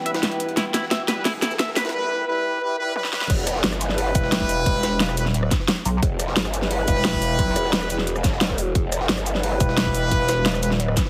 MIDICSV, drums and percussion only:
0, 0, Header, 1, 2, 480
1, 0, Start_track
1, 0, Key_signature, 1, "minor"
1, 0, Tempo, 340909
1, 804, Time_signature, 4, 2, 24, 8
1, 15625, End_track
2, 0, Start_track
2, 0, Title_t, "Drums"
2, 82, Note_on_c, 9, 42, 93
2, 83, Note_off_c, 9, 42, 0
2, 83, Note_on_c, 9, 42, 60
2, 203, Note_off_c, 9, 42, 0
2, 203, Note_on_c, 9, 38, 104
2, 203, Note_on_c, 9, 42, 77
2, 322, Note_off_c, 9, 38, 0
2, 322, Note_off_c, 9, 42, 0
2, 322, Note_on_c, 9, 38, 71
2, 322, Note_on_c, 9, 42, 81
2, 324, Note_off_c, 9, 38, 0
2, 324, Note_on_c, 9, 38, 35
2, 443, Note_off_c, 9, 42, 0
2, 443, Note_on_c, 9, 42, 63
2, 464, Note_off_c, 9, 38, 0
2, 563, Note_off_c, 9, 42, 0
2, 563, Note_on_c, 9, 42, 93
2, 684, Note_off_c, 9, 42, 0
2, 684, Note_on_c, 9, 42, 60
2, 803, Note_off_c, 9, 42, 0
2, 803, Note_on_c, 9, 38, 71
2, 803, Note_on_c, 9, 42, 89
2, 943, Note_off_c, 9, 38, 0
2, 944, Note_off_c, 9, 42, 0
2, 1043, Note_on_c, 9, 38, 75
2, 1043, Note_on_c, 9, 42, 91
2, 1043, Note_on_c, 9, 82, 59
2, 1044, Note_off_c, 9, 42, 0
2, 1044, Note_on_c, 9, 42, 70
2, 1164, Note_off_c, 9, 38, 0
2, 1164, Note_on_c, 9, 38, 47
2, 1184, Note_off_c, 9, 82, 0
2, 1185, Note_off_c, 9, 42, 0
2, 1283, Note_off_c, 9, 38, 0
2, 1283, Note_on_c, 9, 38, 116
2, 1283, Note_on_c, 9, 42, 88
2, 1424, Note_off_c, 9, 38, 0
2, 1424, Note_off_c, 9, 42, 0
2, 1523, Note_on_c, 9, 38, 81
2, 1523, Note_on_c, 9, 42, 69
2, 1523, Note_on_c, 9, 82, 58
2, 1664, Note_off_c, 9, 38, 0
2, 1664, Note_off_c, 9, 42, 0
2, 1664, Note_off_c, 9, 82, 0
2, 1763, Note_on_c, 9, 38, 85
2, 1763, Note_on_c, 9, 42, 78
2, 1763, Note_on_c, 9, 46, 81
2, 1904, Note_off_c, 9, 38, 0
2, 1904, Note_off_c, 9, 42, 0
2, 1904, Note_off_c, 9, 46, 0
2, 2003, Note_on_c, 9, 38, 84
2, 2003, Note_on_c, 9, 42, 67
2, 2003, Note_on_c, 9, 82, 56
2, 2123, Note_off_c, 9, 38, 0
2, 2123, Note_off_c, 9, 82, 0
2, 2123, Note_on_c, 9, 38, 53
2, 2123, Note_on_c, 9, 82, 27
2, 2144, Note_off_c, 9, 42, 0
2, 2242, Note_off_c, 9, 38, 0
2, 2242, Note_on_c, 9, 38, 123
2, 2242, Note_on_c, 9, 42, 91
2, 2243, Note_off_c, 9, 38, 0
2, 2243, Note_off_c, 9, 42, 0
2, 2243, Note_on_c, 9, 38, 90
2, 2243, Note_on_c, 9, 42, 79
2, 2264, Note_off_c, 9, 82, 0
2, 2363, Note_off_c, 9, 38, 0
2, 2363, Note_on_c, 9, 38, 38
2, 2384, Note_off_c, 9, 42, 0
2, 2483, Note_off_c, 9, 38, 0
2, 2483, Note_on_c, 9, 38, 109
2, 2483, Note_on_c, 9, 42, 81
2, 2483, Note_on_c, 9, 46, 79
2, 2483, Note_on_c, 9, 82, 56
2, 2603, Note_off_c, 9, 38, 0
2, 2603, Note_off_c, 9, 42, 0
2, 2603, Note_on_c, 9, 38, 89
2, 2603, Note_on_c, 9, 42, 67
2, 2624, Note_off_c, 9, 46, 0
2, 2624, Note_off_c, 9, 82, 0
2, 2663, Note_off_c, 9, 38, 0
2, 2663, Note_off_c, 9, 42, 0
2, 2663, Note_on_c, 9, 38, 88
2, 2663, Note_on_c, 9, 42, 68
2, 2803, Note_off_c, 9, 38, 0
2, 2803, Note_off_c, 9, 42, 0
2, 4163, Note_on_c, 9, 48, 62
2, 4284, Note_on_c, 9, 38, 65
2, 4304, Note_off_c, 9, 48, 0
2, 4404, Note_off_c, 9, 38, 0
2, 4404, Note_on_c, 9, 38, 90
2, 4524, Note_off_c, 9, 38, 0
2, 4524, Note_on_c, 9, 38, 86
2, 4644, Note_on_c, 9, 36, 117
2, 4644, Note_on_c, 9, 42, 88
2, 4644, Note_on_c, 9, 49, 101
2, 4665, Note_off_c, 9, 38, 0
2, 4785, Note_off_c, 9, 36, 0
2, 4785, Note_off_c, 9, 42, 0
2, 4785, Note_off_c, 9, 49, 0
2, 4884, Note_on_c, 9, 37, 36
2, 4884, Note_on_c, 9, 42, 101
2, 4884, Note_on_c, 9, 82, 60
2, 5004, Note_on_c, 9, 38, 49
2, 5025, Note_off_c, 9, 37, 0
2, 5025, Note_off_c, 9, 42, 0
2, 5025, Note_off_c, 9, 82, 0
2, 5122, Note_off_c, 9, 38, 0
2, 5122, Note_on_c, 9, 38, 120
2, 5122, Note_on_c, 9, 42, 81
2, 5124, Note_off_c, 9, 38, 0
2, 5124, Note_off_c, 9, 42, 0
2, 5124, Note_on_c, 9, 38, 119
2, 5124, Note_on_c, 9, 42, 88
2, 5243, Note_on_c, 9, 37, 51
2, 5243, Note_on_c, 9, 82, 28
2, 5265, Note_off_c, 9, 38, 0
2, 5265, Note_off_c, 9, 42, 0
2, 5363, Note_off_c, 9, 82, 0
2, 5363, Note_on_c, 9, 42, 69
2, 5363, Note_on_c, 9, 82, 61
2, 5384, Note_off_c, 9, 37, 0
2, 5483, Note_on_c, 9, 38, 37
2, 5504, Note_off_c, 9, 42, 0
2, 5504, Note_off_c, 9, 82, 0
2, 5603, Note_on_c, 9, 42, 84
2, 5603, Note_on_c, 9, 46, 82
2, 5624, Note_off_c, 9, 38, 0
2, 5744, Note_off_c, 9, 42, 0
2, 5744, Note_off_c, 9, 46, 0
2, 5843, Note_on_c, 9, 36, 106
2, 5844, Note_on_c, 9, 42, 96
2, 5844, Note_on_c, 9, 82, 58
2, 5964, Note_on_c, 9, 38, 53
2, 5984, Note_off_c, 9, 36, 0
2, 5984, Note_off_c, 9, 42, 0
2, 5984, Note_off_c, 9, 82, 0
2, 6083, Note_off_c, 9, 38, 0
2, 6083, Note_on_c, 9, 38, 121
2, 6083, Note_on_c, 9, 42, 83
2, 6204, Note_off_c, 9, 38, 0
2, 6204, Note_on_c, 9, 36, 60
2, 6204, Note_on_c, 9, 38, 39
2, 6224, Note_off_c, 9, 42, 0
2, 6323, Note_on_c, 9, 42, 68
2, 6324, Note_on_c, 9, 46, 75
2, 6324, Note_on_c, 9, 82, 60
2, 6344, Note_off_c, 9, 36, 0
2, 6345, Note_off_c, 9, 38, 0
2, 6464, Note_off_c, 9, 42, 0
2, 6465, Note_off_c, 9, 46, 0
2, 6465, Note_off_c, 9, 82, 0
2, 6563, Note_on_c, 9, 36, 124
2, 6564, Note_on_c, 9, 42, 76
2, 6684, Note_on_c, 9, 38, 40
2, 6704, Note_off_c, 9, 36, 0
2, 6705, Note_off_c, 9, 42, 0
2, 6803, Note_off_c, 9, 38, 0
2, 6803, Note_on_c, 9, 38, 109
2, 6803, Note_on_c, 9, 42, 81
2, 6804, Note_off_c, 9, 42, 0
2, 6804, Note_on_c, 9, 42, 95
2, 6804, Note_on_c, 9, 82, 60
2, 6944, Note_off_c, 9, 38, 0
2, 6945, Note_off_c, 9, 42, 0
2, 6945, Note_off_c, 9, 82, 0
2, 7044, Note_on_c, 9, 38, 124
2, 7044, Note_on_c, 9, 42, 84
2, 7164, Note_on_c, 9, 37, 49
2, 7164, Note_on_c, 9, 82, 27
2, 7185, Note_off_c, 9, 38, 0
2, 7185, Note_off_c, 9, 42, 0
2, 7283, Note_off_c, 9, 82, 0
2, 7283, Note_on_c, 9, 42, 96
2, 7283, Note_on_c, 9, 82, 57
2, 7284, Note_off_c, 9, 42, 0
2, 7284, Note_on_c, 9, 42, 72
2, 7304, Note_off_c, 9, 37, 0
2, 7404, Note_on_c, 9, 38, 37
2, 7424, Note_off_c, 9, 42, 0
2, 7424, Note_off_c, 9, 82, 0
2, 7523, Note_on_c, 9, 42, 79
2, 7544, Note_off_c, 9, 38, 0
2, 7643, Note_on_c, 9, 37, 51
2, 7664, Note_off_c, 9, 42, 0
2, 7763, Note_on_c, 9, 36, 113
2, 7763, Note_on_c, 9, 38, 37
2, 7763, Note_on_c, 9, 42, 67
2, 7763, Note_on_c, 9, 82, 56
2, 7784, Note_off_c, 9, 37, 0
2, 7884, Note_off_c, 9, 38, 0
2, 7884, Note_on_c, 9, 38, 39
2, 7904, Note_off_c, 9, 36, 0
2, 7904, Note_off_c, 9, 42, 0
2, 7904, Note_off_c, 9, 82, 0
2, 8003, Note_off_c, 9, 38, 0
2, 8003, Note_on_c, 9, 38, 119
2, 8003, Note_on_c, 9, 42, 90
2, 8124, Note_off_c, 9, 38, 0
2, 8124, Note_on_c, 9, 38, 47
2, 8144, Note_off_c, 9, 42, 0
2, 8243, Note_on_c, 9, 46, 75
2, 8243, Note_on_c, 9, 82, 58
2, 8244, Note_on_c, 9, 42, 70
2, 8265, Note_off_c, 9, 38, 0
2, 8384, Note_off_c, 9, 42, 0
2, 8384, Note_off_c, 9, 46, 0
2, 8384, Note_off_c, 9, 82, 0
2, 8483, Note_on_c, 9, 36, 126
2, 8484, Note_on_c, 9, 42, 89
2, 8624, Note_off_c, 9, 36, 0
2, 8625, Note_off_c, 9, 42, 0
2, 8723, Note_on_c, 9, 37, 35
2, 8723, Note_on_c, 9, 42, 94
2, 8723, Note_on_c, 9, 82, 57
2, 8724, Note_off_c, 9, 42, 0
2, 8724, Note_on_c, 9, 42, 70
2, 8843, Note_on_c, 9, 38, 49
2, 8864, Note_off_c, 9, 37, 0
2, 8864, Note_off_c, 9, 42, 0
2, 8864, Note_off_c, 9, 82, 0
2, 8963, Note_off_c, 9, 38, 0
2, 8963, Note_on_c, 9, 38, 125
2, 8963, Note_on_c, 9, 42, 78
2, 8964, Note_off_c, 9, 38, 0
2, 8964, Note_off_c, 9, 42, 0
2, 8964, Note_on_c, 9, 38, 120
2, 8964, Note_on_c, 9, 42, 89
2, 9083, Note_on_c, 9, 37, 49
2, 9083, Note_on_c, 9, 82, 27
2, 9105, Note_off_c, 9, 38, 0
2, 9105, Note_off_c, 9, 42, 0
2, 9203, Note_off_c, 9, 82, 0
2, 9203, Note_on_c, 9, 42, 92
2, 9203, Note_on_c, 9, 82, 58
2, 9204, Note_off_c, 9, 42, 0
2, 9204, Note_on_c, 9, 42, 70
2, 9224, Note_off_c, 9, 37, 0
2, 9323, Note_on_c, 9, 38, 39
2, 9344, Note_off_c, 9, 42, 0
2, 9344, Note_off_c, 9, 82, 0
2, 9443, Note_on_c, 9, 42, 79
2, 9443, Note_on_c, 9, 46, 81
2, 9464, Note_off_c, 9, 38, 0
2, 9584, Note_off_c, 9, 42, 0
2, 9584, Note_off_c, 9, 46, 0
2, 9683, Note_on_c, 9, 42, 91
2, 9683, Note_on_c, 9, 82, 55
2, 9684, Note_off_c, 9, 42, 0
2, 9684, Note_on_c, 9, 36, 114
2, 9684, Note_on_c, 9, 42, 68
2, 9804, Note_on_c, 9, 38, 54
2, 9823, Note_off_c, 9, 82, 0
2, 9824, Note_off_c, 9, 36, 0
2, 9824, Note_off_c, 9, 42, 0
2, 9922, Note_off_c, 9, 38, 0
2, 9922, Note_on_c, 9, 38, 125
2, 9922, Note_on_c, 9, 42, 78
2, 9923, Note_off_c, 9, 38, 0
2, 9923, Note_off_c, 9, 42, 0
2, 9923, Note_on_c, 9, 38, 123
2, 9923, Note_on_c, 9, 42, 91
2, 10043, Note_on_c, 9, 36, 63
2, 10044, Note_off_c, 9, 38, 0
2, 10044, Note_on_c, 9, 38, 39
2, 10064, Note_off_c, 9, 42, 0
2, 10162, Note_on_c, 9, 46, 78
2, 10162, Note_on_c, 9, 82, 58
2, 10165, Note_on_c, 9, 42, 73
2, 10184, Note_off_c, 9, 36, 0
2, 10185, Note_off_c, 9, 38, 0
2, 10303, Note_off_c, 9, 46, 0
2, 10303, Note_off_c, 9, 82, 0
2, 10305, Note_off_c, 9, 42, 0
2, 10402, Note_on_c, 9, 42, 77
2, 10403, Note_on_c, 9, 36, 123
2, 10404, Note_off_c, 9, 42, 0
2, 10404, Note_on_c, 9, 42, 88
2, 10525, Note_on_c, 9, 38, 41
2, 10544, Note_off_c, 9, 36, 0
2, 10545, Note_off_c, 9, 42, 0
2, 10643, Note_on_c, 9, 37, 34
2, 10643, Note_on_c, 9, 42, 90
2, 10643, Note_on_c, 9, 82, 60
2, 10645, Note_off_c, 9, 42, 0
2, 10645, Note_on_c, 9, 42, 68
2, 10666, Note_off_c, 9, 38, 0
2, 10765, Note_on_c, 9, 38, 46
2, 10784, Note_off_c, 9, 37, 0
2, 10784, Note_off_c, 9, 82, 0
2, 10786, Note_off_c, 9, 42, 0
2, 10883, Note_off_c, 9, 38, 0
2, 10883, Note_on_c, 9, 38, 126
2, 10883, Note_on_c, 9, 42, 78
2, 10884, Note_off_c, 9, 38, 0
2, 10884, Note_off_c, 9, 42, 0
2, 10884, Note_on_c, 9, 38, 118
2, 10884, Note_on_c, 9, 42, 87
2, 11004, Note_on_c, 9, 37, 47
2, 11004, Note_on_c, 9, 82, 27
2, 11025, Note_off_c, 9, 38, 0
2, 11025, Note_off_c, 9, 42, 0
2, 11123, Note_off_c, 9, 82, 0
2, 11123, Note_on_c, 9, 42, 70
2, 11123, Note_on_c, 9, 82, 58
2, 11145, Note_off_c, 9, 37, 0
2, 11243, Note_on_c, 9, 38, 38
2, 11264, Note_off_c, 9, 42, 0
2, 11264, Note_off_c, 9, 82, 0
2, 11364, Note_on_c, 9, 42, 88
2, 11384, Note_off_c, 9, 38, 0
2, 11484, Note_on_c, 9, 37, 49
2, 11484, Note_on_c, 9, 82, 28
2, 11504, Note_off_c, 9, 42, 0
2, 11603, Note_on_c, 9, 36, 112
2, 11603, Note_on_c, 9, 38, 36
2, 11603, Note_on_c, 9, 42, 67
2, 11604, Note_off_c, 9, 38, 0
2, 11604, Note_off_c, 9, 42, 0
2, 11604, Note_off_c, 9, 82, 0
2, 11604, Note_on_c, 9, 38, 39
2, 11604, Note_on_c, 9, 42, 86
2, 11604, Note_on_c, 9, 82, 56
2, 11625, Note_off_c, 9, 37, 0
2, 11724, Note_off_c, 9, 38, 0
2, 11724, Note_on_c, 9, 38, 39
2, 11744, Note_off_c, 9, 36, 0
2, 11744, Note_off_c, 9, 42, 0
2, 11744, Note_off_c, 9, 82, 0
2, 11842, Note_off_c, 9, 38, 0
2, 11842, Note_on_c, 9, 38, 127
2, 11842, Note_on_c, 9, 42, 79
2, 11844, Note_off_c, 9, 38, 0
2, 11844, Note_off_c, 9, 42, 0
2, 11844, Note_on_c, 9, 38, 121
2, 11844, Note_on_c, 9, 42, 92
2, 11963, Note_on_c, 9, 36, 64
2, 11964, Note_off_c, 9, 38, 0
2, 11964, Note_on_c, 9, 38, 45
2, 11984, Note_off_c, 9, 42, 0
2, 12083, Note_on_c, 9, 46, 85
2, 12083, Note_on_c, 9, 82, 59
2, 12084, Note_on_c, 9, 42, 70
2, 12104, Note_off_c, 9, 36, 0
2, 12104, Note_off_c, 9, 38, 0
2, 12224, Note_off_c, 9, 42, 0
2, 12224, Note_off_c, 9, 46, 0
2, 12224, Note_off_c, 9, 82, 0
2, 12322, Note_on_c, 9, 42, 76
2, 12323, Note_on_c, 9, 36, 121
2, 12324, Note_off_c, 9, 42, 0
2, 12324, Note_on_c, 9, 42, 89
2, 12463, Note_off_c, 9, 36, 0
2, 12465, Note_off_c, 9, 42, 0
2, 12563, Note_on_c, 9, 37, 32
2, 12563, Note_on_c, 9, 42, 93
2, 12563, Note_on_c, 9, 82, 62
2, 12564, Note_off_c, 9, 42, 0
2, 12564, Note_on_c, 9, 42, 69
2, 12684, Note_on_c, 9, 38, 51
2, 12703, Note_off_c, 9, 37, 0
2, 12703, Note_off_c, 9, 82, 0
2, 12705, Note_off_c, 9, 42, 0
2, 12802, Note_off_c, 9, 38, 0
2, 12802, Note_on_c, 9, 38, 118
2, 12802, Note_on_c, 9, 42, 77
2, 12803, Note_off_c, 9, 38, 0
2, 12803, Note_off_c, 9, 42, 0
2, 12803, Note_on_c, 9, 38, 118
2, 12803, Note_on_c, 9, 42, 89
2, 12922, Note_on_c, 9, 37, 46
2, 12922, Note_on_c, 9, 82, 28
2, 12944, Note_off_c, 9, 38, 0
2, 12944, Note_off_c, 9, 42, 0
2, 13043, Note_off_c, 9, 82, 0
2, 13043, Note_on_c, 9, 42, 94
2, 13043, Note_on_c, 9, 82, 62
2, 13063, Note_off_c, 9, 37, 0
2, 13163, Note_on_c, 9, 38, 38
2, 13184, Note_off_c, 9, 42, 0
2, 13184, Note_off_c, 9, 82, 0
2, 13282, Note_on_c, 9, 46, 80
2, 13283, Note_on_c, 9, 42, 79
2, 13303, Note_off_c, 9, 38, 0
2, 13423, Note_off_c, 9, 46, 0
2, 13424, Note_off_c, 9, 42, 0
2, 13522, Note_on_c, 9, 36, 109
2, 13522, Note_on_c, 9, 42, 87
2, 13522, Note_on_c, 9, 82, 59
2, 13643, Note_on_c, 9, 38, 55
2, 13663, Note_off_c, 9, 36, 0
2, 13663, Note_off_c, 9, 42, 0
2, 13663, Note_off_c, 9, 82, 0
2, 13762, Note_off_c, 9, 38, 0
2, 13762, Note_on_c, 9, 38, 121
2, 13762, Note_on_c, 9, 42, 91
2, 13763, Note_off_c, 9, 38, 0
2, 13763, Note_off_c, 9, 42, 0
2, 13763, Note_on_c, 9, 38, 121
2, 13763, Note_on_c, 9, 42, 75
2, 13882, Note_off_c, 9, 38, 0
2, 13882, Note_on_c, 9, 36, 60
2, 13882, Note_on_c, 9, 38, 39
2, 13904, Note_off_c, 9, 42, 0
2, 14002, Note_on_c, 9, 42, 69
2, 14002, Note_on_c, 9, 46, 84
2, 14002, Note_on_c, 9, 82, 59
2, 14023, Note_off_c, 9, 36, 0
2, 14023, Note_off_c, 9, 38, 0
2, 14143, Note_off_c, 9, 42, 0
2, 14143, Note_off_c, 9, 46, 0
2, 14143, Note_off_c, 9, 82, 0
2, 14242, Note_on_c, 9, 36, 114
2, 14242, Note_on_c, 9, 42, 77
2, 14362, Note_on_c, 9, 38, 40
2, 14383, Note_off_c, 9, 36, 0
2, 14383, Note_off_c, 9, 42, 0
2, 14482, Note_on_c, 9, 42, 93
2, 14482, Note_on_c, 9, 82, 62
2, 14483, Note_off_c, 9, 38, 0
2, 14483, Note_off_c, 9, 42, 0
2, 14483, Note_on_c, 9, 38, 103
2, 14483, Note_on_c, 9, 42, 80
2, 14623, Note_off_c, 9, 82, 0
2, 14624, Note_off_c, 9, 38, 0
2, 14624, Note_off_c, 9, 42, 0
2, 14722, Note_on_c, 9, 38, 121
2, 14722, Note_on_c, 9, 42, 88
2, 14723, Note_off_c, 9, 38, 0
2, 14723, Note_off_c, 9, 42, 0
2, 14723, Note_on_c, 9, 38, 115
2, 14723, Note_on_c, 9, 42, 82
2, 14843, Note_on_c, 9, 37, 46
2, 14843, Note_on_c, 9, 82, 30
2, 14864, Note_off_c, 9, 38, 0
2, 14864, Note_off_c, 9, 42, 0
2, 14963, Note_off_c, 9, 82, 0
2, 14963, Note_on_c, 9, 42, 95
2, 14963, Note_on_c, 9, 82, 64
2, 14984, Note_off_c, 9, 37, 0
2, 15083, Note_on_c, 9, 38, 36
2, 15104, Note_off_c, 9, 42, 0
2, 15104, Note_off_c, 9, 82, 0
2, 15203, Note_on_c, 9, 42, 80
2, 15224, Note_off_c, 9, 38, 0
2, 15324, Note_on_c, 9, 37, 46
2, 15344, Note_off_c, 9, 42, 0
2, 15442, Note_on_c, 9, 36, 106
2, 15443, Note_on_c, 9, 38, 37
2, 15443, Note_on_c, 9, 42, 71
2, 15444, Note_off_c, 9, 38, 0
2, 15444, Note_off_c, 9, 42, 0
2, 15444, Note_on_c, 9, 38, 37
2, 15444, Note_on_c, 9, 42, 92
2, 15444, Note_on_c, 9, 82, 63
2, 15465, Note_off_c, 9, 37, 0
2, 15563, Note_off_c, 9, 38, 0
2, 15563, Note_on_c, 9, 38, 40
2, 15583, Note_off_c, 9, 36, 0
2, 15584, Note_off_c, 9, 42, 0
2, 15584, Note_off_c, 9, 82, 0
2, 15625, Note_off_c, 9, 38, 0
2, 15625, End_track
0, 0, End_of_file